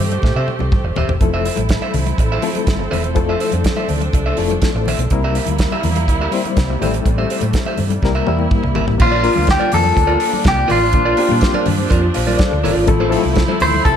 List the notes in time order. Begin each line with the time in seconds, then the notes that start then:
Already playing: A3 C4 G4
0.00 G2
0.10 muted clean electric guitar stroke, closed hi-hat, high conga
0.22 A2, muted clean electric guitar stroke, kick, snare, muted conga
0.35 C3 G4 C5 E5
0.48 muted clean electric guitar stroke, high tom
0.59 C2, muted clean electric guitar stroke, high tom, high conga
0.71 kick, mid tom, high conga
0.84 E1, muted clean electric guitar stroke
0.96 D#1 G4 C5 E5, floor tom, low conga
1.08 E1, muted clean electric guitar stroke, floor tom
1.20 F1 F3 A3 C4 E4 A4, muted clean electric guitar stroke, kick, closed hi-hat
1.34 A4 C5 E5
1.45 A4 C5 E5, open hi-hat
1.56 A1, muted clean electric guitar stroke, closed hi-hat, high conga
1.69 muted clean electric guitar stroke, kick, snare, closed hi-hat
1.82 A4 C5 E5, high conga
1.94 C2, muted clean electric guitar stroke, open hi-hat, low conga
2.06 muted clean electric guitar stroke, closed hi-hat, high conga
2.18 A1, muted clean electric guitar stroke, kick, closed hi-hat, muted conga
2.32 A4 C5 E5
2.42 F3 A3 C4 E4 A4, muted clean electric guitar stroke, open hi-hat
2.55 muted clean electric guitar stroke, closed hi-hat, high conga
2.67 G1, kick, snare, closed hi-hat, muted conga, high conga
2.79 muted clean electric guitar stroke
2.91 E1 A4 C5 E5, open hi-hat, low conga
3.04 muted clean electric guitar stroke, closed hi-hat
3.15 F1 F3 A3 C4 D4 E4 A4, muted clean electric guitar stroke, kick, closed hi-hat
3.29 A4 C5 E5
3.40 A4 C5 E5, open hi-hat
3.51 F2, muted clean electric guitar stroke, closed hi-hat, high conga
3.64 muted clean electric guitar stroke, kick, snare, closed hi-hat
3.76 A4 C5 E5, muted conga, high conga
3.88 D2, muted clean electric guitar stroke, open hi-hat, low conga
4.00 muted clean electric guitar stroke, closed hi-hat, high conga
4.13 C2, muted clean electric guitar stroke, kick, closed hi-hat, muted conga
4.26 A4 C5 E5
4.37 F1 F3 A3 C4 E4 A4, muted clean electric guitar stroke, open hi-hat
4.50 muted clean electric guitar stroke, closed hi-hat, high conga
4.62 kick, snare, closed hi-hat, muted conga, high conga
4.74 A1, muted clean electric guitar stroke
4.86 A#1 A4 C5 E5, open hi-hat, low conga
4.99 B1, muted clean electric guitar stroke, closed hi-hat
5.09 C2 C3 G3 A#3 C4 E4 A#4, muted clean electric guitar stroke, kick, closed hi-hat, muted conga
5.23 G4 A#4 E5, muted conga
5.35 G4 A#4 E5, open hi-hat
5.46 D2, muted clean electric guitar stroke, closed hi-hat, high conga
5.58 muted clean electric guitar stroke, kick, snare, closed hi-hat
5.72 G4 A#4 E5, muted conga, high conga
5.83 E2, muted clean electric guitar stroke, open hi-hat, low conga
5.96 muted clean electric guitar stroke, closed hi-hat, high conga
6.08 D2, muted clean electric guitar stroke, kick, closed hi-hat, muted conga
6.21 G4 A#4 E5, muted conga
6.31 G3 A#3 C4 E4 C5, muted clean electric guitar stroke, open hi-hat
6.45 muted clean electric guitar stroke, closed hi-hat, high conga
6.57 C2, kick, snare, closed hi-hat, muted conga, high conga
6.70 muted clean electric guitar stroke
6.80 A1 G3 A3 C4 E4 G4 A4 C5 E5, open hi-hat, low conga
6.94 muted clean electric guitar stroke, closed hi-hat
7.06 A1, muted clean electric guitar stroke, kick, closed hi-hat, muted conga
7.18 G4 C5 E5
7.30 G4 C5 E5, open hi-hat
7.41 A2, muted clean electric guitar stroke, closed hi-hat, high conga
7.53 muted clean electric guitar stroke, kick, snare, closed hi-hat
7.66 G4 C5 E5, muted conga, high conga
7.77 G2, muted clean electric guitar stroke, open hi-hat, low conga
7.90 muted clean electric guitar stroke, closed hi-hat, high conga
8.02 C2 G3 A#3 C4 E4 A#4, muted clean electric guitar stroke, kick, snare, muted conga
8.15 G4 A#4 E5, muted conga
8.27 E2 G3 A#3 C4 E4 G4 A#4 E5, high tom
8.39 muted clean electric guitar stroke, high conga
8.51 kick, mid tom, high conga
8.63 C2, muted clean electric guitar stroke, mid tom
8.75 G#1 G4 A#4 E5, floor tom, low conga
8.87 A1, muted clean electric guitar stroke, floor tom
8.98 A#1 F3 A#3 D4 F4, muted clean electric guitar stroke, kick, crash
9.02 F4, muted conga, low conga
9.11 F4 A#4 D5, muted conga
9.23 A#3 D4 F4 A#4 D5, open hi-hat
9.35 D2, muted clean electric guitar stroke, high conga
9.47 G4, muted clean electric guitar stroke, kick, snare, closed hi-hat, muted conga
9.60 F4 A#4 D5, high conga
9.72 F2 A4, muted clean electric guitar stroke, open hi-hat, low conga
9.84 muted clean electric guitar stroke, high conga
9.96 D2, muted clean electric guitar stroke, kick, closed hi-hat, muted conga
10.07 F4 A#4 D5, muted conga
10.20 muted clean electric guitar stroke, open hi-hat
10.32 muted clean electric guitar stroke, high conga
10.44 C2 G4, kick, snare, closed hi-hat, muted conga, high conga
10.56 muted clean electric guitar stroke, muted conga
10.68 A1 F4 A#4 D5, open hi-hat, low conga
10.81 muted clean electric guitar stroke
10.93 A#1 A#3 C4 D4 F4, muted clean electric guitar stroke, kick, closed hi-hat, muted conga, low conga
11.05 F4 A#4 D5
11.17 A#3 D4 F4 G4 A#4 D5, open hi-hat
11.29 A#2, muted clean electric guitar stroke, high conga
11.41 muted clean electric guitar stroke, kick, snare, closed hi-hat
11.54 F4 A#4 D5, muted conga, high conga
11.66 G2, muted clean electric guitar stroke, open hi-hat, low conga
11.78 muted clean electric guitar stroke, high conga
11.90 F2 F4 A#4 D5, kick, closed hi-hat, muted conga
12.03 muted clean electric guitar stroke
12.14 A#1 C5 F5, muted clean electric guitar stroke, open hi-hat
12.27 F4 A#4 D5, high conga
12.38 A4 D5, kick, snare, closed hi-hat, muted conga, high conga
12.51 D2, muted clean electric guitar stroke
12.63 G1 F4 A#4 D5, open hi-hat, low conga
12.77 G#1, muted clean electric guitar stroke
12.86 A1 F3 A3 C4 E4 A4, muted clean electric guitar stroke, kick, closed hi-hat, low conga
13.00 E4 A4 C5, muted conga
13.09 F3 A3 C4 E4 A4 C5, open hi-hat
13.23 C2, muted clean electric guitar stroke, high conga
13.35 muted clean electric guitar stroke, kick, snare, closed hi-hat
13.48 E4 A4 C5, muted conga, high conga
13.60 D2 C5, muted clean electric guitar stroke, open hi-hat, low conga
13.73 muted clean electric guitar stroke, high conga
13.85 C2 A4, muted clean electric guitar stroke, kick, closed hi-hat, muted conga